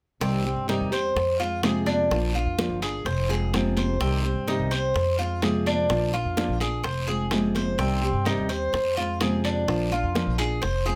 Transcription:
0.20 upright bass C2, nylon-string guitar C3 D#3 G3 C4 G4, cuban tres C4, high bongo, high conga, long guiro
0.45 nylon-string guitar G3 C4 G4, high conga
0.56 upright bass G2
0.67 nylon-string guitar C3 D#3 G3 C4 G4, cuban tres D#4, high bongo, high conga, short guiro
0.81 upright bass E2
0.91 nylon-string guitar G3 C4 G4, cuban tres C5, high conga, short guiro
1.16 upright bass F2, muted nylon-string guitar stroke, high bongo, high conga, long guiro
1.40 nylon-string guitar G#3 C4 F4, cuban tres F4, high conga
1.63 nylon-string guitar C3 F3 G#3 C4 F4, cuban tres G#4, high bongo, low bongo, high conga, short guiro
1.86 cuban tres D4, high conga, short guiro
2.10 upright bass A#1, nylon-string guitar F3 A#3 D4 F4, high bongo, high conga, long guiro
2.35 nylon-string guitar A#3 D4 F4, cuban tres F4, high conga
2.46 upright bass F2
2.58 nylon-string guitar F3 A#3 D4 F4, high bongo, high conga, short guiro
2.69 upright bass G1
2.82 nylon-string guitar A#3 D4 F4, cuban tres G#4, high bongo, high conga, short guiro
3.05 upright bass F1, cuban tres C5, muted nylon-string guitar stroke, high bongo, high conga, long guiro
3.29 nylon-string guitar G#3 C4 F4, cuban tres G#4, high bongo, high conga
3.54 nylon-string guitar C3 F3 G#3 C4 F4, high bongo, low bongo, high conga, short guiro
3.77 cuban tres C5, high bongo, high conga, short guiro
4.00 upright bass C2, nylon-string guitar C3 D#3 G3 C4 G4, cuban tres C4, high bongo, high conga, long guiro
4.24 nylon-string guitar G3 C4 G4, high conga
4.36 upright bass G2
4.47 nylon-string guitar C3 D#3 G3 C4 G4, cuban tres D#4, high bongo, high conga, short guiro
4.59 upright bass C2
4.71 nylon-string guitar G3 C4 G4, cuban tres C5, high conga, short guiro
4.94 upright bass F2, muted nylon-string guitar stroke, high bongo, high conga, long guiro
5.18 nylon-string guitar G#3 C4 F4, cuban tres F4, high conga
5.42 nylon-string guitar C3 F3 G#3 C4 F4, cuban tres G#4, high bongo, low bongo, high conga, short guiro
5.66 cuban tres D4, high conga, short guiro
5.89 upright bass A#1, nylon-string guitar F3 A#3 D4 F4, high bongo, high conga, long guiro
6.13 nylon-string guitar A#3 D4 F4, cuban tres F4, high conga
6.25 upright bass F2
6.37 nylon-string guitar F3 A#3 D4 F4, high bongo, high conga, short guiro
6.48 upright bass A#1
6.60 nylon-string guitar A#3 D4 F4, cuban tres G#4, high bongo, high conga, short guiro
6.83 upright bass F1, cuban tres C5, muted nylon-string guitar stroke, high bongo, high conga, long guiro
7.07 nylon-string guitar G#3 C4 F4, cuban tres G#4, high bongo, high conga
7.31 nylon-string guitar C3 F3 G#3 C4 F4, high bongo, low bongo, high conga, short guiro
7.55 cuban tres C5, high bongo, high conga, short guiro
7.78 upright bass C2, nylon-string guitar C3 D#3 G3 C4 G4, cuban tres C4, high bongo, high conga, long guiro
8.03 nylon-string guitar G3 C4 G4, high conga
8.13 upright bass G2
8.25 nylon-string guitar C3 D#3 G3 C4 G4, cuban tres D#4, high bongo, high conga, short guiro
8.38 upright bass D#2
8.49 nylon-string guitar G3 C4 G4, cuban tres C5, high conga, short guiro
8.73 upright bass F2, muted nylon-string guitar stroke, high bongo, high conga, long guiro
8.97 nylon-string guitar G#3 C4 F4, cuban tres F4, high conga
9.20 nylon-string guitar C3 F3 G#3 C4 F4, cuban tres G#4, high bongo, low bongo, high conga, short guiro
9.44 cuban tres D4, short guiro
9.68 upright bass A#1, nylon-string guitar F3 A#3 D4 F4, high bongo, high conga, long guiro
9.91 nylon-string guitar A#3 D4 F4, cuban tres F4, high conga
10.03 upright bass F2
10.14 nylon-string guitar F3 A#3 D4 F4, high bongo, high conga, short guiro
10.27 upright bass A#1
10.38 nylon-string guitar A#3 D4 F4, cuban tres G#4, high bongo, high conga, short guiro
10.62 upright bass F1, cuban tres C5, muted nylon-string guitar stroke, high bongo, high conga, long guiro
10.85 nylon-string guitar G#3 C4 F4, cuban tres G#4, high bongo, high conga

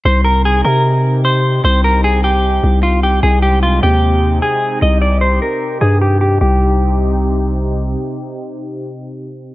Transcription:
0.05 808-style bass C2, analog synth pad C3 C4 D#4 G4, clean electric guitar C5
0.25 clean electric guitar A#4
0.45 clean electric guitar G#4
0.65 808-style bass C3, clean electric guitar A#4
1.25 clean electric guitar C5
1.64 808-style bass C2, clean electric guitar C5
1.84 clean electric guitar A#4
2.04 clean electric guitar G#4
2.24 clean electric guitar G4
2.64 808-style bass C2
2.83 clean electric guitar F4
3.03 clean electric guitar G4
3.23 808-style bass C2, analog synth pad G#3 C4 D#4, clean electric guitar G#4
3.42 clean electric guitar G4
3.63 clean electric guitar F4
3.83 808-style bass D#2, clean electric guitar G4
4.42 clean electric guitar G#4
4.82 808-style bass C2, analog synth pad G4, clean electric guitar D#5
5.02 clean electric guitar D5
5.21 clean electric guitar C5
5.42 clean electric guitar A#4
5.81 808-style bass G2, clean electric guitar G#4
6.01 clean electric guitar G4
6.21 clean electric guitar G4
6.41 808-style bass C2, analog synth pad C3 C4 D#4 G4, clean electric guitar G4

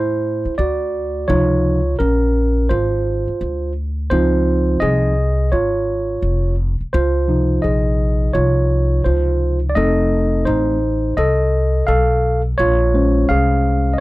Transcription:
Already playing: upright bass A2, tine electric piano E4 C5
0.45 muted upright bass stroke
0.58 upright bass D2, tine electric piano F#4 D5
1.28 upright bass C#2, tine electric piano C3 F3 D#4 F4 C#5
1.99 upright bass A#1, tine electric piano C#4 A#4
2.69 upright bass G#1, tine electric piano F4 C5
3.28 muted upright bass stroke
3.41 upright bass D2
4.10 upright bass C#2, tine electric piano F3 C4 D#4 F4 C5
4.80 upright bass C2, tine electric piano G#4 D#5
5.52 upright bass G#1, tine electric piano F4 C#5
6.22 upright bass F1
6.81 muted upright bass stroke
6.93 upright bass C#2, tine electric piano F4 C5
7.28 tine electric piano C3 F3 D#4
7.62 upright bass A#1, tine electric piano G#4 D#5
8.33 upright bass C2, tine electric piano F4 C#5
9.04 upright bass C#2, tine electric piano F4 C5
9.70 tine electric piano D5
9.75 upright bass F1, tine electric piano A3 C4 D#4 A4 D#5
10.45 upright bass A1, tine electric piano D#4 C5
11.17 upright bass C2, tine electric piano A4 D#5
11.87 upright bass B1, tine electric piano A4 F5
12.58 upright bass A#1, tine electric piano F4 C#5
12.94 tine electric piano G#3 C#4 C5
13.29 upright bass C2, tine electric piano G#4 F5
13.94 tine electric piano D#5

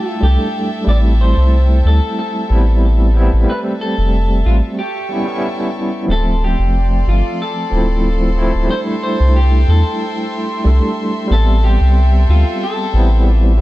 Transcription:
Already playing: tine electric piano G3 A3 D4 E4, clean electric guitar G4, violin section A4 E5 G5 A5
0.09 clean electric guitar F4
0.21 analog synth bass C2, tine electric piano G3 A3 D4 A4, clean electric guitar G4
0.84 analog synth bass A1, tine electric piano G3 A3
0.88 tine electric piano C4 E4, clean electric guitar D5
1.21 clean electric guitar C5
1.37 analog synth bass C2
1.85 analog synth bass D2, clean electric guitar A4
2.19 clean electric guitar A4
2.49 analog synth bass A1, tine electric piano G3 B3 C4 E4
3.14 tine electric piano G3 B3 C4 E4
3.33 analog synth bass A1
3.45 tine electric piano G3 A3, violin section E5 A5
3.49 tine electric piano C4 E5, clean electric guitar B4
3.81 clean electric guitar A4
3.98 analog synth bass F1
4.46 analog synth bass A1, clean electric guitar F4
4.78 clean electric guitar G4, violin section A4 E5 G5 C#6
5.09 tine electric piano G3 B3 C#4 E4
5.25 tine electric piano G3 B3
5.30 tine electric piano C#4 E4
6.06 analog synth bass D1, tine electric piano F3 A3, violin section A4 D5 C6
6.10 tine electric piano C4 E5, clean electric guitar A4
6.44 clean electric guitar G4
6.59 analog synth bass F1
7.07 analog synth bass G1, clean electric guitar F4
7.42 clean electric guitar A4
7.70 analog synth bass D1, tine electric piano F3 A3 C4 E4
8.35 tine electric piano F3 A3 C4 E4
8.55 analog synth bass D1
8.67 tine electric piano G3 A3, clean electric guitar C5, violin section E5 G5
8.71 tine electric piano D4 E4
9.03 clean electric guitar C5
9.20 analog synth bass C2
9.36 clean electric guitar G4
9.68 analog synth bass E2, clean electric guitar A4
10.64 analog synth bass C2, tine electric piano G3 A3 D4 A4
11.27 analog synth bass A1, tine electric piano G3 B3, violin section A4 G5
11.32 tine electric piano C4 E5, clean electric guitar A4
11.64 clean electric guitar G4
11.81 analog synth bass C2
12.29 analog synth bass D2, clean electric guitar F4
12.63 clean electric guitar A4
12.92 analog synth bass A1, tine electric piano G3 B3 C4 E4
13.28 clean electric guitar G4
13.57 tine electric piano G3

